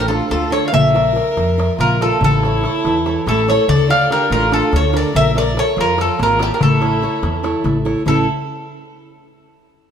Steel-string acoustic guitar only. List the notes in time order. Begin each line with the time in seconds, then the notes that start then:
Already playing: A3
0.08 D4 F4 A4
0.30 D3
0.50 D4 F4 A4
0.73 A#3
0.94 F4 A#4 D5
1.15 F4 A#4 D5
1.37 F3
1.58 F4 A#4 D5
1.80 A#3
2.01 F4 A#4 D5
2.24 A3
2.44 E4 A4 C#5
2.65 E4 A4 C#5
2.87 E3
3.06 E4 A4 C#5
3.28 A3
3.48 E4 A4 C#5
3.69 D3
3.89 D4 F4 A4
4.11 D4 F4 A4
4.32 A3
4.51 D4 F4 A4
4.72 D3
4.93 D4 F4 A4
5.16 A#3
5.35 F4 A#4 D5
5.56 F4 A#4 D5
5.77 F3
5.98 F4 A#4 D5
6.20 A#3
6.40 F4 A#4 D5
6.61 A3
6.81 E4 A4 C#5
7.02 E4 A4 C#5
7.23 E3
7.43 E4 A4 C#5
7.64 A3
7.85 E4 A4 C#5
8.06 A2 E3 A3 C#4 E4